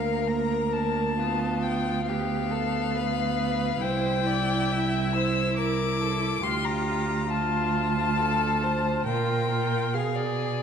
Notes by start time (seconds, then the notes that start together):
Already playing: D2 A#3 A#4 F5
0.27 A#3 A#5
0.73 A5
1.19 B3 F4
1.62 G5
2.06 B3 G4 F5
2.51 A4
2.95 B4
3.80 C2 E4 C5 G5
4.26 D5
4.72 E5
5.13 C5 E6
5.57 A#4 D6
6.01 A4
6.43 D2 F4 G4 C6
6.64 A#5
7.30 F4 A5
8.18 A4
8.63 C5
9.06 A#2 F4 A#4 G5
9.50 F4
9.94 B2 G#4 F5
10.16 D5